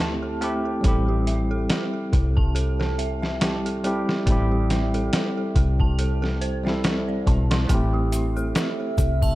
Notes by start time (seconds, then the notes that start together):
Already playing: D2 A4 E5
0.00 A3 C4 E4 G4 A5
0.22 A4
0.41 A3 C4 E4 G4 A4, closed hi-hat
0.65 A4
0.81 A1 G3 C4 A4, kick, closed hi-hat
0.85 E4 G4
1.08 G4
1.27 E5, closed hi-hat
1.51 A4
1.70 A4, snare, closed hi-hat
1.93 A4
2.13 C2 A4, kick, closed hi-hat
2.37 A5, kick
2.55 A4, closed hi-hat
2.80 A4, snare
2.98 E5, closed hi-hat
3.22 E5, snare
3.40 G3 C4 E4 G4 A5, snare, closed hi-hat
3.65 A4, closed hi-hat
3.84 G3 C4 E4 G4 A4, closed hi-hat
4.09 A4, snare
4.26 A1 G3 C4 A4, kick, closed hi-hat
4.30 E4 G4
4.52 G4
4.70 E5, snare, closed hi-hat
4.94 A4, closed hi-hat
5.13 A4, snare, closed hi-hat
5.37 A4
5.55 C2 A4, kick, closed hi-hat
5.80 A5, kick
5.99 A4, closed hi-hat
6.22 A4, snare
6.41 C5, closed hi-hat
6.63 G3 C4 E5, snare
6.68 E4 A4
6.84 A4, snare, closed hi-hat
7.08 D5
7.27 B1 A5, kick, closed hi-hat
7.51 E4, snare, closed hi-hat
7.67 A1 A3 C4 A4, kick, closed hi-hat, shaker
7.72 E4 G4
7.93 G4
8.12 E5, closed hi-hat, shaker
8.37 A4, shaker
8.55 A4 E5, snare, closed hi-hat, shaker
8.80 A4
8.98 C2 A4, kick, closed hi-hat, shaker
9.22 A5, kick, triangle, shaker